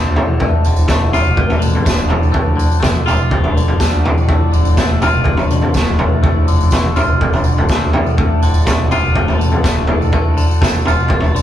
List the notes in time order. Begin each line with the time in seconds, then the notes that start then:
Already playing: D2 D3 F3 A3 D4 A4 D5
0.04 D2
0.16 A2, floor tom, mid tom
0.40 D2 A3, kick, floor tom
0.65 D1 D3, tambourine
0.76 tambourine
0.88 A3, kick, snare, floor tom, mid tom, tambourine
1.02 D1
1.13 F4, mid tom, tambourine
1.26 D1, tambourine
1.36 D2, kick, floor tom
1.50 mid tom, tambourine
1.59 A1 D3, tambourine
1.75 floor tom
1.85 D1 A3, kick, snare, tambourine
2.09 A2, floor tom, mid tom
2.23 D2, tambourine
2.32 A3, kick, floor tom
2.46 D2
2.56 D3, tambourine
2.72 tambourine
2.80 F1 A3, kick, snare, floor tom, mid tom, tambourine
3.06 D1 F4, mid tom, tambourine
3.20 tambourine
3.31 D1 D2, kick, floor tom
3.44 mid tom
3.57 D3, tambourine
3.68 D1, floor tom
3.80 A3, kick, snare, tambourine
3.92 D2
4.04 A2, floor tom, mid tom
4.17 tambourine
4.28 D2 A3, kick, floor tom
4.51 D1 D3, tambourine
4.65 tambourine
4.77 A3, kick, snare, floor tom, mid tom, tambourine
4.89 D1
5.02 F4, mid tom, tambourine
5.14 D1, tambourine
5.24 D2, kick, floor tom
5.37 mid tom, tambourine
5.51 A1 D3, tambourine
5.62 floor tom
5.74 D1 A3, kick, snare, tambourine
5.99 A2, floor tom, mid tom
6.12 D2
6.23 A3, kick, floor tom
6.36 D2
6.48 F1 D3, tambourine
6.60 tambourine
6.71 E1 A3, kick, snare, floor tom, mid tom, tambourine
6.96 D1 F4, mid tom, tambourine
7.21 D1 D2, kick, floor tom
7.33 mid tom, tambourine
7.44 D3, tambourine
7.57 D1, floor tom
7.69 A3, kick, snare, tambourine
7.81 D2
7.93 A2, floor tom, mid tom
8.06 tambourine
8.18 D2 A3, kick, floor tom
8.42 D1 D3, tambourine
8.54 tambourine
8.66 A3, kick, snare, floor tom, mid tom, tambourine
8.80 D1
8.91 F4, mid tom, tambourine
9.03 D1, tambourine
9.15 D2, kick, floor tom
9.28 mid tom, tambourine
9.39 A1 D3, tambourine
9.52 floor tom
9.63 D1 A3, kick, snare, tambourine
9.87 A2, floor tom, mid tom
10.01 D2, tambourine
10.12 A3, kick, floor tom
10.25 D2
10.37 D3, tambourine
10.51 tambourine
10.61 F1 A3, kick, snare, floor tom, mid tom, tambourine
10.85 D1 F4, mid tom, tambourine
11.00 tambourine
11.08 D1 D2, kick, floor tom
11.20 mid tom, tambourine
11.35 D3, tambourine